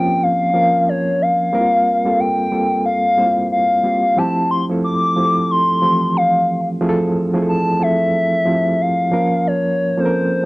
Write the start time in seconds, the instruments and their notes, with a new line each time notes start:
Already playing: reed electric piano F3 A#3 C4 C#4 F4 G4 A#4, soft synth lead G5
0.23 soft synth lead F5
0.54 reed electric piano F3 A#3 C#4 A#4
0.89 soft synth lead C#5
1.22 soft synth lead F5
1.53 reed electric piano G3 A#3 C4 E4 A#4
1.60 reed electric piano F4
2.05 reed electric piano G3 A#3 C4 F4 A4
2.20 soft synth lead G5
2.52 reed electric piano G3 A#3 C4 F4 A4
2.86 soft synth lead F5
3.18 reed electric piano G3 A#3 C4 E4 C5
3.26 reed electric piano F4
3.52 soft synth lead F5
3.83 reed electric piano G3 A#3 C4 F4 G4
4.17 reed electric piano F3 G3 C4 E4 G4, soft synth lead A5
4.24 reed electric piano A3
4.51 soft synth lead C6
4.70 reed electric piano F3 A3 C4 E4 A4
4.84 soft synth lead D6
5.16 reed electric piano F3 A3 C4 E4 G4
5.25 reed electric piano A4
5.51 soft synth lead C6
5.82 reed electric piano E3 F3 A3 C4 G4
6.17 soft synth lead F5
6.81 reed electric piano F3 A3 C4 E4 G#4
6.89 reed electric piano A4
7.34 reed electric piano F3 A3 C4 E4 G#4
7.42 reed electric piano A4
7.49 soft synth lead A5
7.80 reed electric piano F3 A3 C4 E4 A4, soft synth lead E5
8.46 reed electric piano F3 A3 C4 E4 G4
8.81 soft synth lead F5
9.11 reed electric piano F3 A#3 C#4 A#4
9.47 soft synth lead C#5
9.97 reed electric piano F3 A#3 C4 C#4 A4, soft synth lead C5
10.05 reed electric piano A#4